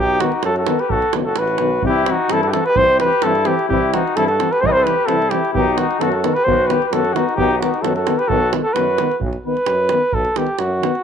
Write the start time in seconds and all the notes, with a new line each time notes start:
Already playing: B1
0.00 D#4 G4
0.20 D#3 B3 D#4 F#4, davul high
0.32 davul high
0.43 F#2 F#4 A4, davul high
0.56 F#4 A4, davul high
0.67 D#3 B3, davul high
0.79 G4 B4, davul high
0.89 B1 F#4 A4, davul low
1.02 davul high
1.13 F#1 D#3 B3, davul high
1.25 F#4 A4
1.36 A1 F#4 B4, davul high
1.47 davul high
1.58 B1 D#3 B3, davul high
1.82 C2 E3 C4 G4, davul low
1.88 E4
2.06 E3 C4 F#4, davul high
2.12 D#4
2.29 G2 E3 C4 A4, davul high
2.34 E4
2.43 F#4 G4 A4, davul high
2.49 C4 E4 A4
2.53 E3 F#4, davul high
2.66 G4 B4, davul high
2.76 C2 E3 C4 C5, davul low
2.81 G4
3.00 E3 C4 B4, davul high
3.04 G4
3.12 davul high
3.22 G2 E3 C4 A4, davul high
3.27 E4
3.35 davul high
3.45 E3 C4 G4, davul high
3.50 E4
3.59 davul high
3.69 C2 E3 C4 E4 G4, davul low
3.92 E3 C4 D#4 F#4, davul high
4.08 davul high
4.16 G2 E3 C4 E4 A4, davul high
4.27 F#4 A4, davul high
4.39 E3 C4, davul high
4.52 G4 B4, davul high
4.61 C2 E3 C4 G4 C5, davul low
4.66 B4 D#5
4.72 C5
4.77 A4
4.84 E3 C4 G4 B4, davul high
5.06 C2 E3 C4 E4 A4, davul high
5.22 davul high
5.30 E3 C4 E4 G4, davul high
5.45 davul high
5.53 B1 D#3 B3 G4, davul low
5.57 D#4
5.76 D#3 B3 D#4 F#4, davul high
5.91 davul high
5.99 F#2 D#3 B3 F#4 A4, davul high
6.12 F#4 A4, davul high
6.23 D#3 B3, davul high
6.34 G4 B4, davul high
6.44 B1 D#3 B3 F#4 C5, davul low
6.67 D#3 B3 B4, davul high
6.72 G4
6.82 B4, davul high
6.88 F#2 D#3 G4
6.93 B3 F#4 A4, davul high
7.05 davul high
7.13 D#3 B3 D#4 F#4, davul high
7.29 davul high
7.36 B1 D#3 B3 G4, davul low
7.41 D#4
7.58 D#3 B3 D#4 F#4
7.63 davul high
7.74 davul high
7.81 F#2 D#3 B3 F#4 A4, davul high
7.96 F#4 A4, davul high
8.07 D#3 B3, davul high
8.18 G4 B4, davul high
8.28 B1 D#3 B3 F#4 A4, davul low
8.53 D#3 B3, davul high
8.64 F#4 A4
8.73 F#2 D#3 B3 F#4 B4, davul high
8.98 D#3 B3, davul high
9.12 davul high
9.20 B1, davul low
9.33 davul high
9.46 D#3 B3 B4
9.57 davul high
9.66 F#2, davul high
9.89 D#3 B3, davul high
10.12 B1 A4, davul low
10.25 davul high
10.36 D#3 B3 G4, davul high
10.47 davul high
10.59 F#2 F#4, davul high
10.81 D#3 B3, davul high
10.95 davul high